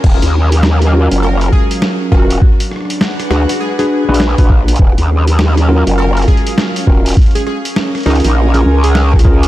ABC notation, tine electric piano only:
X:1
M:4/4
L:1/16
Q:"Swing 16ths" 1/4=101
K:Ebm
V:1 name="Tine electric piano"
z6 [DFGB]8 [DFGB]2 | z6 [=DGAc] z2 [DGAc]2 [DGAc] z [DGAc] z2 | z6 [DFGB]8 [DFGB]2 | z6 [DFAB] z2 [DFAB]2 z3 [DFAB] z |]